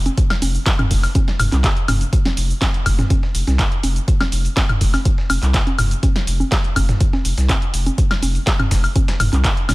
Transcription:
0.06 closed hi-hat, high conga, cabasa
0.17 kick, closed hi-hat, cabasa
0.30 snare, closed hi-hat, high woodblock
0.42 sub bass F1, closed hi-hat, open hi-hat, high conga, cabasa
0.55 closed hi-hat, cabasa
0.66 kick, snare, clap, closed hi-hat, cabasa
0.79 closed hi-hat, mid tom, high conga, high woodblock
0.91 sub bass F1, kick, closed hi-hat, open hi-hat, cabasa
1.03 snare, open hi-hat, cabasa, high woodblock
1.15 kick, closed hi-hat, high conga, cabasa
1.28 snare
1.39 sub bass F1, closed hi-hat, mid tom, open hi-hat, cabasa, high woodblock
1.52 sub bass C2, snare, clap, closed hi-hat, high conga, cabasa
1.64 kick, snare, clap, closed hi-hat, cabasa
1.77 closed hi-hat
1.88 sub bass F1, closed hi-hat, mid tom, open hi-hat, high conga, cabasa, high woodblock
2.01 closed hi-hat, cabasa
2.13 kick, closed hi-hat, cabasa
2.25 snare, closed hi-hat, high conga
2.37 sub bass F1, closed hi-hat, open hi-hat, cabasa
2.50 cabasa
2.61 kick, snare, clap, closed hi-hat, high conga, cabasa
2.74 closed hi-hat
2.86 sub bass F1, kick, closed hi-hat, open hi-hat, cabasa, high woodblock
2.99 snare, closed hi-hat, mid tom, high conga, cabasa
3.10 kick, closed hi-hat, high conga, cabasa
3.23 snare
3.35 sub bass F1, closed hi-hat, open hi-hat, cabasa
3.47 sub bass C2, snare, closed hi-hat, high conga, cabasa
3.59 kick, snare, clap, closed hi-hat, cabasa
3.72 closed hi-hat
3.83 sub bass F1, closed hi-hat, open hi-hat, high conga, cabasa
3.96 closed hi-hat, cabasa
4.08 kick, closed hi-hat, cabasa
4.21 snare, closed hi-hat, high conga, high woodblock
4.32 sub bass F1, closed hi-hat, open hi-hat, cabasa
4.45 closed hi-hat, cabasa
4.57 kick, snare, clap, closed hi-hat, high conga, cabasa
4.69 closed hi-hat, mid tom, high woodblock
4.81 sub bass F1, kick, closed hi-hat, open hi-hat, cabasa
4.94 snare, open hi-hat, high conga, cabasa, high woodblock
5.05 kick, closed hi-hat, cabasa
5.18 snare
5.30 sub bass F1, closed hi-hat, open hi-hat, high conga, cabasa, high woodblock
5.42 sub bass C2, snare, clap, closed hi-hat, cabasa
5.54 kick, snare, clap, closed hi-hat, cabasa
5.67 closed hi-hat, high conga
5.79 sub bass F1, closed hi-hat, mid tom, open hi-hat, cabasa, high woodblock
5.91 closed hi-hat, cabasa
6.03 kick, closed hi-hat, high conga, cabasa
6.16 snare, closed hi-hat
6.27 sub bass F1, closed hi-hat, open hi-hat, cabasa
6.40 high conga, cabasa
6.52 kick, snare, clap, closed hi-hat, cabasa
6.64 closed hi-hat
6.76 sub bass F1, kick, closed hi-hat, open hi-hat, high conga, cabasa, high woodblock
6.89 snare, closed hi-hat, mid tom, cabasa
7.00 kick, closed hi-hat, cabasa
7.13 snare, high conga
7.25 sub bass F1, closed hi-hat, open hi-hat, cabasa
7.38 sub bass C2, snare, closed hi-hat, cabasa
7.49 kick, snare, clap, closed hi-hat, high conga, cabasa
7.62 closed hi-hat
7.74 sub bass F1, closed hi-hat, open hi-hat, cabasa
7.86 closed hi-hat, high conga, cabasa
7.98 kick, closed hi-hat, cabasa
8.11 snare, closed hi-hat, high woodblock
8.22 sub bass F1, closed hi-hat, open hi-hat, high conga, cabasa
8.35 closed hi-hat, cabasa
8.47 kick, snare, clap, closed hi-hat, cabasa
8.60 closed hi-hat, mid tom, high conga, high woodblock
8.71 sub bass F1, kick, snare, closed hi-hat, open hi-hat, cabasa
8.84 open hi-hat, cabasa, high woodblock
8.96 kick, closed hi-hat, high conga, cabasa
9.08 snare, closed hi-hat
9.20 sub bass F1, closed hi-hat, mid tom, open hi-hat, cabasa, high woodblock
9.33 sub bass C2, clap, closed hi-hat, high conga, cabasa
9.44 kick, snare, clap, closed hi-hat, cabasa
9.57 closed hi-hat
9.69 sub bass F1, snare, closed hi-hat, mid tom, open hi-hat, high conga, cabasa, high woodblock

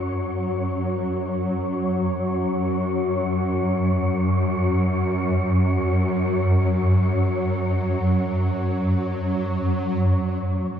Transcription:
Already playing: synth drone F#2 F#3, synth texture C#4 C#5
10.03 synth drone F#2 F#3, analog synth pad A3

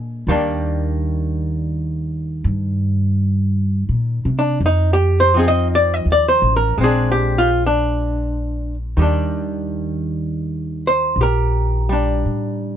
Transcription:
Already playing: upright bass A#2, hollow-body jazz guitar G#3 D4
0.27 upright bass D#2, hollow-body jazz guitar D#3 G3 A#3 D4
2.44 upright bass G2
3.89 upright bass A#2
4.25 upright bass C3
4.39 hollow-body jazz guitar D4
4.60 upright bass F2
4.66 hollow-body jazz guitar D#4
4.93 hollow-body jazz guitar G4
5.20 hollow-body jazz guitar C5
5.34 hollow-body jazz guitar F3 C4 D#4
5.39 hollow-body jazz guitar G#4
5.48 hollow-body jazz guitar D#5
5.75 hollow-body jazz guitar D5
5.94 hollow-body jazz guitar D#5
6.05 upright bass D#2
6.12 hollow-body jazz guitar D5
6.28 hollow-body jazz guitar C5
6.42 upright bass A1
6.56 hollow-body jazz guitar A#4
6.78 upright bass A#1, hollow-body jazz guitar G#3 C4
6.84 hollow-body jazz guitar D4 G#4
7.12 hollow-body jazz guitar G4
7.38 hollow-body jazz guitar F4
7.66 hollow-body jazz guitar D4
8.97 upright bass D#2, hollow-body jazz guitar D#3 G3
9.02 hollow-body jazz guitar D4
10.87 hollow-body jazz guitar C5
11.16 upright bass A#1
11.21 hollow-body jazz guitar G4 A#4
11.89 hollow-body jazz guitar G3 D4
12.25 upright bass A2

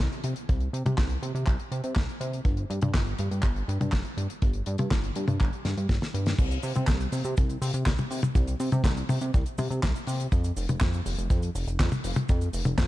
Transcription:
0.12 closed hi-hat
0.24 analog synth bass C3, closed hi-hat
0.36 closed hi-hat
0.49 analog synth bass C2, kick, closed hi-hat
0.60 closed hi-hat
0.73 analog synth bass C3, closed hi-hat
0.86 analog synth bass C3, closed hi-hat, high tom
0.98 analog synth bass C2, kick, snare, clap, closed hi-hat
1.09 closed hi-hat
1.23 analog synth bass C3, closed hi-hat
1.35 analog synth bass C3, closed hi-hat
1.47 analog synth bass C2, kick, clap, closed hi-hat
1.60 closed hi-hat
1.72 analog synth bass C3, closed hi-hat
1.84 analog synth bass C3, closed hi-hat
1.96 analog synth bass C2, kick, snare, clap, closed hi-hat
2.09 closed hi-hat
2.21 analog synth bass C3, closed hi-hat
2.33 closed hi-hat
2.45 analog synth bass G1, kick, closed hi-hat
2.57 closed hi-hat
2.70 analog synth bass G2, closed hi-hat
2.82 analog synth bass G2, closed hi-hat, high tom
2.94 analog synth bass G1, kick, snare, clap, closed hi-hat
3.07 closed hi-hat
3.19 analog synth bass G2, closed hi-hat
3.31 analog synth bass G2, closed hi-hat
3.43 analog synth bass G1, kick, clap, closed hi-hat
3.56 closed hi-hat
3.68 analog synth bass G2, closed hi-hat
3.81 analog synth bass G2, closed hi-hat, high tom
3.92 analog synth bass G1, kick, snare, clap, closed hi-hat
4.05 closed hi-hat
4.17 analog synth bass G2, closed hi-hat
4.30 closed hi-hat
4.42 analog synth bass G1, kick, closed hi-hat
4.53 closed hi-hat
4.66 analog synth bass G2, closed hi-hat
4.78 analog synth bass G2, closed hi-hat, high tom
4.91 analog synth bass G1, kick, snare, clap, closed hi-hat
5.04 closed hi-hat
5.16 analog synth bass G2, closed hi-hat
5.28 analog synth bass G2, closed hi-hat, high tom
5.40 analog synth bass G1, kick, clap, closed hi-hat
5.53 closed hi-hat
5.65 analog synth bass G2, snare, closed hi-hat
5.77 analog synth bass G2, closed hi-hat
5.89 analog synth bass G1, kick, snare, closed hi-hat
6.02 snare, closed hi-hat
6.14 analog synth bass G2, closed hi-hat
6.26 snare, closed hi-hat
6.39 analog synth bass C2, kick, closed hi-hat, crash, cabasa
6.51 closed hi-hat, cabasa
6.63 analog synth bass C3, open hi-hat, cabasa
6.75 analog synth bass C3, closed hi-hat, high tom, cabasa
6.87 analog synth bass C2, kick, snare, clap, closed hi-hat, cabasa
7.00 closed hi-hat, cabasa
7.12 analog synth bass C3, open hi-hat, cabasa
7.24 analog synth bass C3, closed hi-hat, cabasa
7.37 analog synth bass C2, kick, closed hi-hat, cabasa
7.50 closed hi-hat, cabasa
7.62 analog synth bass C3, open hi-hat, cabasa
7.74 analog synth bass C3, closed hi-hat, cabasa
7.86 analog synth bass C2, kick, snare, clap, closed hi-hat, cabasa
7.98 closed hi-hat, high tom, cabasa
8.11 analog synth bass C3, open hi-hat, cabasa
8.22 closed hi-hat, high tom, cabasa
8.35 analog synth bass C2, kick, closed hi-hat, cabasa
8.47 closed hi-hat, cabasa
8.60 analog synth bass C3, open hi-hat, cabasa
8.72 analog synth bass C3, closed hi-hat, high tom, cabasa
8.84 analog synth bass C2, kick, snare, clap, closed hi-hat, cabasa
8.97 closed hi-hat, cabasa
9.09 analog synth bass C3, open hi-hat, high tom, cabasa
9.21 analog synth bass C3, closed hi-hat, cabasa
9.34 analog synth bass C2, kick, closed hi-hat, cabasa
9.46 closed hi-hat, cabasa
9.58 analog synth bass C3, open hi-hat, high tom, cabasa
9.71 analog synth bass C3, closed hi-hat, cabasa
9.83 analog synth bass C2, kick, snare, clap, closed hi-hat, cabasa
9.96 closed hi-hat, cabasa
10.07 analog synth bass C3, open hi-hat, cabasa
10.20 closed hi-hat, cabasa
10.32 analog synth bass F2, kick, closed hi-hat, cabasa
10.44 closed hi-hat, cabasa
10.57 analog synth bass F1, open hi-hat, cabasa
10.69 analog synth bass F1, closed hi-hat, high tom, cabasa
10.81 analog synth bass F2, kick, snare, clap, closed hi-hat, cabasa
10.93 closed hi-hat, cabasa
11.06 analog synth bass F1, open hi-hat, cabasa
11.18 analog synth bass F1, closed hi-hat, cabasa
11.30 analog synth bass F2, kick, closed hi-hat, cabasa
11.42 closed hi-hat, cabasa
11.55 analog synth bass F1, open hi-hat, cabasa
11.67 analog synth bass F1, closed hi-hat, cabasa
11.79 analog synth bass F2, kick, snare, clap, closed hi-hat, cabasa
11.92 closed hi-hat, high tom, cabasa
12.04 analog synth bass F1, open hi-hat, cabasa
12.16 closed hi-hat, high tom, cabasa
12.29 analog synth bass F2, kick, closed hi-hat, cabasa
12.41 closed hi-hat, cabasa
12.53 analog synth bass F1, open hi-hat, cabasa
12.65 analog synth bass F1, closed hi-hat, high tom, cabasa
12.78 analog synth bass F2, kick, snare, clap, closed hi-hat, cabasa

